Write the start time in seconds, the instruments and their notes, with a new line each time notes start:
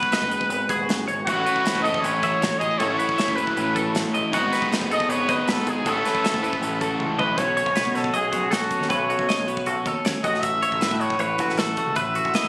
Already playing: clean electric guitar G#2 B3 F#4 B4, trumpet B4
0.03 kick
0.12 clean electric guitar D#4 D#5, snare, closed hi-hat
0.22 picked electric bass F#1, kick
0.31 clean electric guitar G#3 B4, closed hi-hat
0.41 kick
0.50 picked electric bass G#1, clean electric guitar B3, closed hi-hat
0.69 picked electric bass D#1, clean electric guitar F#4 G#4, kick, closed hi-hat
0.88 picked electric bass F#1, clean electric guitar F#2, snare, closed hi-hat
1.08 picked electric bass G#1, clean electric guitar G#2 C#5, closed hi-hat
1.25 picked electric bass A1, clean electric guitar A2 E4 F#5, overdriven electric guitar E3, trumpet F#4, kick, closed hi-hat
1.29 overdriven electric guitar A3 C#4
1.46 clean electric guitar C#4 B4, closed hi-hat
1.56 kick
1.66 clean electric guitar E4, snare, closed hi-hat
1.75 picked electric bass F#1, kick
1.82 clean electric guitar E3 A4, trumpet D#5, closed hi-hat
1.94 kick
2.01 picked electric bass A1, clean electric guitar C#4 B4, trumpet C#5, closed hi-hat
2.23 clean electric guitar F#4 E5, kick, closed hi-hat
2.42 picked electric bass A1, clean electric guitar A2 C#5, snare, closed hi-hat
2.59 picked electric bass A1, clean electric guitar C#4 G#4, trumpet D#5, kick, closed hi-hat
2.71 clean electric guitar E4
2.78 picked electric bass A1, clean electric guitar A2 A4, overdriven electric guitar E3 A3 C#4, trumpet C#5, kick, closed hi-hat
2.82 overdriven electric guitar E4, clean electric guitar F#4
2.99 clean electric guitar C#4 B4, closed hi-hat
3.09 kick
3.18 clean electric guitar C#4 E5, snare, closed hi-hat
3.28 picked electric bass F#1, clean electric guitar E4, kick
3.36 clean electric guitar E3 B4, trumpet B4, closed hi-hat
3.47 kick
3.57 picked electric bass A1, clean electric guitar C#4, closed hi-hat
3.76 clean electric guitar F#4 A4, kick, closed hi-hat
3.94 picked electric bass A1, clean electric guitar A2, snare, closed hi-hat
4.14 picked electric bass A1, clean electric guitar E4 D#5, closed hi-hat
4.32 picked electric bass G#1, clean electric guitar G#2 G#3 B3 D#4 F#5, overdriven electric guitar D#3, trumpet F#4, kick, closed hi-hat
4.53 clean electric guitar B3 B4, snare, closed hi-hat
4.62 kick
4.72 clean electric guitar D#4, snare, closed hi-hat
4.81 picked electric bass F#1, kick
4.91 clean electric guitar G#3 A4, trumpet D#5, closed hi-hat
5.00 kick
5.08 picked electric bass G#1, clean electric guitar B3 B4, trumpet C#5, closed hi-hat
5.28 clean electric guitar F#4 D#5, trumpet B4, kick, closed hi-hat
5.47 picked electric bass G#1, clean electric guitar D#3 B4, snare, closed hi-hat
5.51 trumpet A4
5.59 snare
5.66 picked electric bass G#1, clean electric guitar D#4 G#4, trumpet G#4, kick, closed hi-hat
5.86 picked electric bass A1, clean electric guitar A2 E3 C#4 E4 F#4 A4, overdriven electric guitar A3, trumpet A4, kick, closed hi-hat
6.05 clean electric guitar C#4 B4, snare, closed hi-hat
6.15 kick
6.24 clean electric guitar C#4 E5, snare, closed hi-hat
6.33 picked electric bass F#1, clean electric guitar E4, kick
6.43 clean electric guitar E3 B4, closed hi-hat
6.53 kick
6.61 picked electric bass A1, clean electric guitar C#4, closed hi-hat
6.81 clean electric guitar F#4 A4, kick, closed hi-hat
7.00 picked electric bass C#2, clean electric guitar A2, kick
7.18 picked electric bass B1, clean electric guitar E4 D#5, trumpet B4, floor tom
7.37 picked electric bass B1, clean electric guitar B2 F#3 A3 C#4 F#4, trumpet C#5, kick, closed hi-hat
7.57 clean electric guitar C#5, closed hi-hat
7.66 picked electric bass B1, kick
7.76 clean electric guitar B4, snare, closed hi-hat
7.85 picked electric bass B2, kick
7.95 clean electric guitar F#3 C#4, trumpet A4, snare, closed hi-hat
8.04 kick
8.14 picked electric bass B1, clean electric guitar F#4 D#5, trumpet G#4, closed hi-hat
8.32 picked electric bass B1, clean electric guitar C#4 F#4, kick, closed hi-hat
8.50 clean electric guitar F#2 A4, trumpet F#4, snare, closed hi-hat
8.71 clean electric guitar C#4, kick, closed hi-hat
8.80 picked electric bass D#2, snare
8.90 picked electric bass B1, clean electric guitar B2 A4 B4, trumpet C#5, kick, closed hi-hat
9.10 clean electric guitar F#4, closed hi-hat
9.19 picked electric bass B1, kick
9.29 clean electric guitar D#5, snare, closed hi-hat
9.39 picked electric bass B1
9.47 clean electric guitar F#3 C#4 B4, closed hi-hat
9.57 kick
9.66 picked electric bass B1, clean electric guitar F#4 A4, closed hi-hat
9.86 picked electric bass D#2, clean electric guitar C#4 A4, kick, closed hi-hat
10.05 picked electric bass D#2, clean electric guitar F#2 C#5, snare, closed hi-hat
10.23 picked electric bass A1, clean electric guitar A2 F#4, trumpet D#5, kick, closed hi-hat
10.34 snare
10.41 trumpet E5, kick, closed hi-hat
10.63 clean electric guitar C#5, closed hi-hat
10.72 picked electric bass A1, kick
10.81 clean electric guitar E3 E4 B4, snare, closed hi-hat
10.91 picked electric bass A2, kick
11.01 clean electric guitar F#4, trumpet C#5, closed hi-hat
11.10 kick
11.19 picked electric bass A1, clean electric guitar E4 C#5, trumpet B4, closed hi-hat
11.38 picked electric bass A1, clean electric guitar A2 F#4, kick, closed hi-hat
11.49 snare
11.57 clean electric guitar F#4 A4, trumpet A4, snare, closed hi-hat
11.77 clean electric guitar A2 F#4, kick, closed hi-hat
11.86 picked electric bass C#2
11.96 picked electric bass A1, clean electric guitar B4, trumpet E5, kick, closed hi-hat
12.15 clean electric guitar F#4, closed hi-hat
12.25 picked electric bass A1, kick
12.34 clean electric guitar E3 E4 D#5, snare, closed hi-hat
12.43 picked electric bass A1